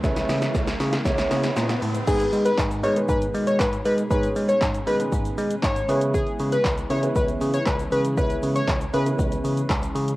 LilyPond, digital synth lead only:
\new Staff \with { instrumentName = "Digital synth lead" } { \time 4/4 \key cis \minor \tempo 4 = 118 r1 | gis'8 r16 b'8 r16 cis''16 r16 b'16 r8 cis''16 b'16 r16 b'16 r16 | b'8 r16 cis''8 r16 b'16 r4 r16 cis''8. r16 | gis'8 r16 b'8 r16 cis''16 r16 b'16 r8 cis''16 b'16 r16 b'16 r16 |
b'8 r16 cis''8 r16 b'16 r2 r16 | }